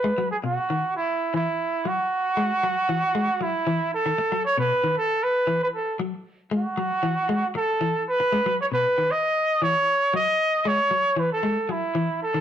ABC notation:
X:1
M:4/4
L:1/16
Q:1/4=116
K:Bmix
V:1 name="Trumpet"
B2 G F4 E3 E4 F2- | F8- F2 E4 A2- | A2 c B3 A2 B3 B A2 z2 | z2 F8 A4 B2- |
B2 c B3 d4 c4 d2- | d2 c4 B A3 E4 A2 |]
V:2 name="Clean electric guitar" clef=bass
G, F,2 B,,2 D,2 z3 E,2 z2 F,2 | z2 G,2 F,2 E,2 G,2 F,2 E,2 z D, | z F,2 B,,2 D,2 z3 E,2 z2 F,2 | z2 G,2 F,2 E,2 G,2 z2 E,2 z2 |
G, F,2 B,,2 D,2 z3 E,2 z2 F,2 | z2 G,2 F,2 E,2 G,2 F,2 E,2 z D, |]